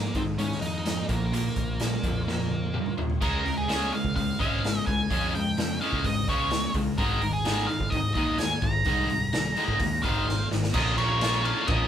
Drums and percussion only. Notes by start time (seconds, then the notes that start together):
0.15 kick, closed hi-hat
0.39 closed hi-hat
0.51 snare
0.62 closed hi-hat
0.86 snare, closed hi-hat
1.09 kick, closed hi-hat
1.33 closed hi-hat
1.56 kick, closed hi-hat
1.80 snare, closed hi-hat
2.04 kick, closed hi-hat
2.28 snare
2.51 high tom
2.74 mid tom
2.86 mid tom
2.98 floor tom
3.10 floor tom
3.22 kick, crash
3.46 snare, open hi-hat
3.69 snare, open hi-hat
3.92 open hi-hat
4.04 kick
4.16 kick, open hi-hat
4.40 kick, open hi-hat
4.64 snare, open hi-hat
4.87 kick, open hi-hat
5.11 kick, open hi-hat
5.35 open hi-hat
5.58 snare, open hi-hat
5.81 open hi-hat
5.93 kick
6.04 kick, open hi-hat
6.28 kick, open hi-hat
6.51 snare, open hi-hat
6.74 kick, open hi-hat
6.98 kick, open hi-hat
7.22 open hi-hat
7.45 snare, open hi-hat
7.69 open hi-hat
7.80 kick
7.92 kick, open hi-hat
8.15 kick, open hi-hat
8.38 snare, open hi-hat
8.62 kick, open hi-hat
8.85 kick, open hi-hat
9.10 open hi-hat
9.33 snare, open hi-hat
9.56 open hi-hat
9.68 kick
9.79 kick, open hi-hat
10.04 kick, open hi-hat
10.29 snare
10.52 snare
10.63 snare
10.74 kick, crash
10.98 ride
11.21 snare, ride
11.45 ride
11.68 kick, ride